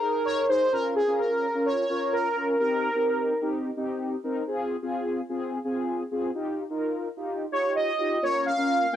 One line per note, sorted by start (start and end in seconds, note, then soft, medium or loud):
0.00 0.41 D#4 medium
0.00 0.41 G#4 medium
0.00 0.45 A#4 medium
0.00 0.41 A#4 medium
0.25 0.47 C#5 loud
0.49 0.68 D#4 loud
0.49 0.68 G#4 medium
0.49 0.73 C5 loud
0.49 0.68 C5 loud
0.72 1.01 C#4 medium
0.72 1.01 F4 medium
0.72 0.94 A#4 loud
0.72 1.01 A#4 medium
0.95 1.20 G#4 medium
1.08 1.46 C#4 medium
1.08 1.46 F4 medium
1.08 1.46 A#4 medium
1.19 1.67 A#4 loud
1.54 1.83 C#4 medium
1.54 1.83 F4 medium
1.54 1.83 A#4 medium
1.66 2.14 C#5 loud
1.90 2.28 C#4 medium
1.90 2.28 F4 medium
1.90 2.28 A#4 medium
2.13 2.58 A#4 medium
2.36 2.56 C#4 medium
2.36 2.56 F4 medium
2.36 2.56 A#4 medium
2.59 2.89 C4 medium
2.59 2.89 D#4 medium
2.59 2.89 G4 medium
2.59 3.49 A#4 loud
2.95 3.33 C4 medium
2.95 3.33 D#4 medium
2.95 3.33 G4 medium
3.42 3.71 C4 medium
3.42 3.71 D#4 medium
3.42 3.71 G4 loud
3.77 4.15 C4 medium
3.77 4.15 D#4 medium
3.77 4.15 G4 loud
4.24 4.43 C4 medium
4.24 4.43 D#4 medium
4.24 4.43 A#4 loud
4.47 4.76 C4 medium
4.47 4.76 F4 medium
4.47 4.76 G#4 loud
4.82 5.21 C4 medium
4.82 5.21 F4 medium
4.82 5.21 G#4 loud
5.29 5.58 C4 medium
5.29 5.58 F4 medium
5.29 5.58 G#4 loud
5.64 6.03 C4 medium
5.64 6.03 F4 medium
5.64 6.03 G#4 loud
6.11 6.31 C4 medium
6.11 6.31 F4 medium
6.11 6.31 G#4 loud
6.35 6.64 D#4 medium
6.35 6.64 F4 medium
6.35 6.64 G4 loud
6.70 7.09 D#4 medium
6.70 7.09 F4 medium
6.70 7.09 A#4 loud
7.17 7.46 D#4 medium
7.17 7.46 F4 medium
7.17 7.46 G4 loud
7.52 7.91 D#4 medium
7.52 7.91 F4 medium
7.52 7.91 G4 loud
7.52 7.74 C#5 medium
7.76 8.24 D#5 loud
7.99 8.18 D#4 medium
7.99 8.18 F4 medium
7.99 8.18 G4 loud
8.22 8.51 A#3 medium
8.22 8.51 C#4 medium
8.22 8.51 F4 medium
8.22 8.51 A#4 medium
8.22 8.47 C#5 loud
8.46 8.94 F5 loud
8.57 8.86 A#3 medium
8.57 8.86 C#4 medium
8.57 8.86 F4 medium
8.57 8.86 A#4 medium
8.93 8.96 A#3 medium
8.93 8.96 C#4 medium
8.93 8.96 F4 medium
8.93 8.96 A#4 medium